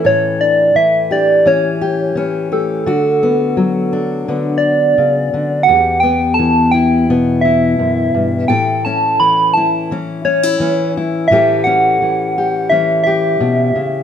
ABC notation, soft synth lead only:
X:1
M:4/4
L:1/8
Q:1/4=86
K:Amix
V:1 name="Soft synth lead"
c d e d c2 z A- | A4- A d3 | f g a g z e3 | g a b a z c2 z |
e f3 e e3 |]